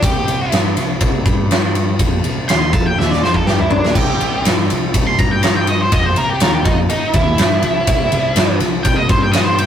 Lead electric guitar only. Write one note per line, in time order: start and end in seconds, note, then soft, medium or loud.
0.04 0.51 G4 loud
2.49 2.73 C6 loud
2.73 2.85 A5 loud
2.86 2.98 G5 medium
2.98 3.11 E5 medium
3.11 3.22 D5 medium
3.23 3.35 C5 loud
3.34 3.47 A4 medium
3.47 3.59 G4 loud
3.60 3.70 E4 loud
3.70 3.95 D4 medium
3.94 4.43 G4 loud
5.07 5.19 C6 loud
5.19 5.30 A#5 loud
5.31 5.43 G5 medium
5.42 5.55 A#5 loud
5.56 5.68 G5 medium
5.68 5.81 D#5 medium
5.81 5.92 C5 medium
5.92 6.06 D#5 loud
6.06 6.17 C5 medium
6.17 6.29 A#4 loud
6.29 6.41 G4 medium
6.42 6.53 A#4 medium
6.54 6.66 G4 medium
6.64 6.77 D#4 loud
6.90 7.14 D#4 medium
7.14 8.57 E4 loud
8.83 8.96 G5 loud
8.96 9.09 D#5 loud
9.10 9.22 C5 loud
9.21 9.34 G5 loud
9.32 9.44 D#5 loud
9.45 9.57 C5 loud
9.58 9.66 G5 medium